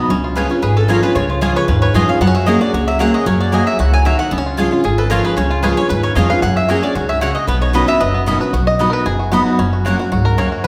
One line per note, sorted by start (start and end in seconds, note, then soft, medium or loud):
0.00 0.10 F#4 medium
0.10 0.44 C#2 medium
0.10 0.60 C#3 medium
0.10 0.50 C#4 medium
0.24 0.60 F4 medium
0.35 0.49 F3 medium
0.35 0.50 G#3 medium
0.35 0.46 C#4 medium
0.35 0.50 C#4 medium
0.35 0.46 F4 medium
0.35 0.48 F4 medium
0.35 0.61 B4 medium
0.35 0.46 C#5 medium
0.35 0.46 G#5 medium
0.49 0.76 C#4 medium
0.49 0.63 C#4 soft
0.49 0.62 F4 medium
0.62 0.97 G#1 medium
0.62 1.13 G#2 medium
0.62 0.76 G#4 medium
0.62 1.00 B4 medium
0.76 1.59 C#4 medium
0.76 0.89 A4 medium
0.88 1.02 F3 medium
0.88 1.02 G#3 medium
0.88 0.98 C#4 medium
0.88 1.03 C#4 loud
0.88 0.99 F4 medium
0.88 1.01 F4 loud
0.88 1.95 G#4 medium
0.88 1.03 A#4 medium
0.88 0.99 C#5 loud
0.88 0.99 G#5 loud
1.02 1.16 C#4 soft
1.02 1.15 F4 medium
1.02 1.39 B4 medium
1.02 1.15 B4 medium
1.15 1.50 C#2 loud
1.15 1.66 C#3 loud
1.15 1.41 F4 medium
1.15 1.29 C#5 medium
1.30 1.41 F4 medium
1.41 1.67 F3 medium
1.41 1.67 G#3 medium
1.41 1.51 C#4 medium
1.41 1.67 C#4 medium
1.41 1.79 F4 medium
1.41 1.51 F4 medium
1.41 1.68 F4 medium
1.41 1.55 G#4 medium
1.41 1.52 C#5 medium
1.41 1.52 G#5 medium
1.56 1.81 B4 medium
1.56 1.68 C#5 loud
1.68 1.91 D#2 medium
1.68 2.18 G#2 medium
1.68 2.08 C#4 medium
1.68 1.81 B4 medium
1.82 2.19 B4 medium
1.82 1.94 C#5 loud
1.94 2.17 F2 medium
1.94 2.08 F3 medium
1.94 2.08 G#3 medium
1.94 2.04 C#4 medium
1.94 2.08 C#4 loud
1.94 2.04 F4 medium
1.94 2.07 F4 loud
1.94 2.35 G#4 medium
1.94 2.04 C#5 medium
1.94 2.08 D#5 medium
1.94 2.04 G#5 loud
2.08 2.21 C#4 medium
2.08 2.20 F4 medium
2.08 2.21 F5 medium
2.21 2.55 F#2 medium
2.21 2.45 F#3 medium
2.21 2.27 B3 medium
2.21 2.34 F#5 loud
2.27 2.48 C#4 medium
2.35 2.60 F#4 medium
2.35 2.47 E5 medium
2.46 2.60 F#3 medium
2.46 2.85 F#3 medium
2.46 2.56 A#3 medium
2.46 2.61 A#3 medium
2.46 2.61 C#4 medium
2.46 2.57 F#4 medium
2.46 2.60 G#4 loud
2.46 2.57 C#5 medium
2.46 2.60 D#5 medium
2.46 2.57 G#5 medium
2.61 2.73 F#4 medium
2.61 2.73 G#4 medium
2.61 2.73 D5 loud
2.73 3.07 C#2 medium
2.73 3.24 C#3 medium
2.73 2.99 F#4 medium
2.73 2.87 C#5 medium
2.87 3.24 F#3 medium
2.87 3.00 E5 loud
2.99 3.25 F#3 medium
2.99 3.09 A#3 medium
2.99 3.25 A#3 medium
2.99 3.25 C#4 loud
2.99 3.09 F#4 medium
2.99 3.13 F#4 medium
2.99 3.26 G#4 loud
2.99 3.09 C#5 medium
2.99 3.14 F#5 loud
2.99 3.10 G#5 loud
3.14 3.39 F#4 medium
3.14 3.26 D#5 medium
3.26 3.60 F#2 medium
3.26 3.51 F#3 loud
3.26 4.32 C#4 medium
3.26 3.40 C#5 medium
3.40 3.66 F#4 medium
3.40 3.53 D5 medium
3.52 3.78 F#3 medium
3.52 3.90 F#3 medium
3.52 3.62 A#3 medium
3.52 3.78 A#3 medium
3.52 3.78 C#4 medium
3.52 3.62 F#4 medium
3.52 3.78 G#4 medium
3.52 3.62 C#5 medium
3.52 3.67 D#5 medium
3.52 3.63 G#5 loud
3.67 3.79 F#4 medium
3.67 3.79 E5 medium
3.79 4.13 C#2 medium
3.79 4.04 E3 medium
3.79 4.05 F#4 medium
3.79 3.93 F#5 medium
3.94 4.30 F#3 medium
3.94 4.05 G#5 loud
4.05 4.30 D#3 medium
4.05 4.15 A#3 medium
4.05 4.15 F#4 medium
4.05 4.19 F#4 medium
4.05 4.15 C#5 medium
4.05 4.19 E5 medium
4.05 4.15 G#5 medium
4.19 4.32 F#4 medium
4.19 4.31 F#5 loud
4.31 4.66 C#2 medium
4.31 4.82 C#3 medium
4.31 4.38 B3 medium
4.38 4.58 C#4 medium
4.46 4.71 F4 medium
4.57 4.71 F3 medium
4.57 4.72 G#3 medium
4.57 4.67 C#4 medium
4.57 4.72 C#4 medium
4.57 4.67 F4 medium
4.57 4.70 F4 loud
4.57 4.84 G#4 medium
4.57 4.68 C#5 medium
4.57 4.68 G#5 loud
4.71 4.85 C#4 medium
4.71 4.84 F4 medium
4.71 5.09 F4 medium
4.84 5.19 G#1 medium
4.84 5.34 G#2 medium
4.84 4.98 G#4 medium
4.84 5.24 G#4 medium
4.98 5.09 A4 medium
4.98 5.35 B4 medium
5.10 5.36 F3 loud
5.10 5.36 G#3 loud
5.10 5.20 C#4 medium
5.10 5.36 C#4 loud
5.10 5.20 F4 loud
5.10 5.48 F4 medium
5.10 5.37 F4 loud
5.10 5.24 A#4 medium
5.10 5.20 C#5 loud
5.10 5.20 G#5 loud
5.24 5.61 G#4 medium
5.24 5.36 B4 medium
5.37 5.71 C#2 medium
5.37 5.88 C#3 medium
5.37 5.77 C#4 medium
5.37 5.50 C#5 medium
5.50 5.87 F4 medium
5.50 5.63 F4 medium
5.63 5.76 F3 medium
5.63 5.77 G#3 medium
5.63 5.73 C#4 medium
5.63 5.77 C#4 medium
5.63 5.73 F4 medium
5.63 5.76 F4 medium
5.63 5.77 G#4 medium
5.63 5.89 B4 medium
5.63 5.73 C#5 medium
5.63 5.73 G#5 medium
5.77 6.03 C#4 medium
5.77 5.90 C#4 medium
5.77 5.89 F4 medium
5.77 5.89 C#5 loud
5.89 6.12 D#2 medium
5.89 6.40 G#2 medium
5.89 6.03 B4 medium
5.89 6.27 B4 medium
6.03 6.42 C#4 medium
6.03 6.15 C#5 loud
6.15 6.39 F2 medium
6.15 6.30 F3 medium
6.15 6.30 G#3 loud
6.15 6.25 C#4 medium
6.15 6.30 C#4 loud
6.15 6.26 F4 medium
6.15 6.29 F4 medium
6.15 6.43 G#4 medium
6.15 6.26 C#5 loud
6.15 6.29 D#5 medium
6.15 6.26 G#5 loud
6.30 6.43 C#4 medium
6.30 6.42 F4 medium
6.30 6.42 B4 medium
6.30 6.42 F5 medium
6.42 6.77 F#2 loud
6.42 6.67 F#3 medium
6.42 6.80 C#4 medium
6.42 6.56 F#5 loud
6.56 6.68 F#4 medium
6.56 6.69 E5 medium
6.68 6.82 F#3 medium
6.68 6.78 A#3 medium
6.68 6.83 A#3 medium
6.68 6.83 C#4 loud
6.68 6.95 F#4 medium
6.68 6.78 F#4 medium
6.68 6.82 G#4 medium
6.68 6.79 C#5 loud
6.68 6.83 D#5 medium
6.68 6.79 G#5 medium
6.83 7.08 C#4 medium
6.83 6.96 C#4 soft
6.83 6.95 G#4 medium
6.83 6.95 D5 medium
6.95 7.29 C#2 medium
6.95 7.20 G#2 medium
6.95 7.21 F#4 medium
6.95 7.09 C#5 medium
7.09 7.45 C#4 medium
7.09 7.21 E5 medium
7.21 7.47 C#3 medium
7.21 7.31 A#3 medium
7.21 7.35 F#4 medium
7.21 7.31 F#4 loud
7.21 7.31 C#5 loud
7.21 7.35 F#5 loud
7.21 7.31 G#5 loud
7.35 8.27 F#4 medium
7.35 7.47 D#5 medium
7.47 7.82 B1 medium
7.47 7.72 B2 loud
7.47 7.86 B3 medium
7.47 7.61 B4 medium
7.61 7.98 D#4 medium
7.61 7.74 C#5 medium
7.73 7.87 B2 medium
7.73 7.88 D#3 medium
7.73 7.84 C#4 medium
7.73 7.88 C#4 loud
7.73 7.84 F#4 medium
7.73 7.86 F#4 loud
7.73 7.99 B4 medium
7.73 7.88 D#5 medium
7.73 7.84 D#5 medium
7.73 7.84 B5 medium
7.88 8.13 B3 medium
7.88 8.01 C#4 medium
7.88 8.00 F#4 medium
7.88 8.00 E5 loud
8.00 8.35 F#1 medium
8.00 8.51 F#2 medium
8.00 8.38 B4 medium
8.00 8.44 D#5 medium
8.14 8.51 B3 medium
8.26 8.40 B2 medium
8.26 8.41 D#3 loud
8.26 8.36 C#4 medium
8.26 8.41 C#4 medium
8.26 8.52 F#4 medium
8.26 8.37 F#4 medium
8.26 8.40 F#4 loud
8.26 8.37 D#5 loud
8.26 8.37 B5 loud
8.41 8.54 C#4 soft
8.41 8.53 F#4 medium
8.41 8.53 B4 medium
8.53 8.87 B1 medium
8.53 9.04 B2 medium
8.53 8.67 F#4 medium
8.67 8.89 D#5 loud
8.79 9.05 F#3 medium
8.79 8.89 B3 medium
8.79 9.05 B3 medium
8.79 9.05 D#4 medium
8.79 9.05 D#4 loud
8.79 8.89 F#4 medium
8.79 9.06 F#4 medium
8.79 8.89 D#5 medium
8.79 8.89 B5 medium
8.90 8.94 A#4 medium
8.90 9.06 B4 medium
9.06 9.40 F#1 medium
9.06 9.56 F#2 medium
9.06 9.31 G#4 medium
9.20 9.30 F#4 medium
9.32 9.57 F#3 loud
9.32 9.42 B3 loud
9.32 9.58 B3 loud
9.32 9.58 D#4 medium
9.32 9.57 F#4 medium
9.32 9.42 F#4 medium
9.32 9.58 F#4 loud
9.32 9.42 D#5 loud
9.32 9.42 B5 loud
9.46 9.59 D#4 medium
9.59 9.93 F#1 medium
9.59 10.09 F#2 medium
9.59 9.96 C#4 medium
9.73 9.85 F#4 medium
9.85 9.99 F#3 medium
9.85 9.94 A#3 medium
9.85 9.99 A#3 medium
9.85 10.00 C#4 medium
9.85 9.95 F#4 medium
9.85 9.99 F#4 medium
9.85 9.98 F#4 medium
9.85 9.95 C#5 medium
9.85 9.95 F#5 medium
9.99 10.12 C#4 medium
9.99 10.11 F#4 medium
10.12 10.46 C#2 medium
10.12 10.37 G#2 medium
10.12 10.49 F#4 medium
10.25 10.65 A#4 loud
10.38 10.63 F#2 medium
10.38 10.47 A#3 medium
10.38 10.64 C#4 medium
10.38 10.47 F#4 medium
10.38 10.48 C#5 loud
10.38 10.48 F#5 loud
10.52 10.65 F#4 medium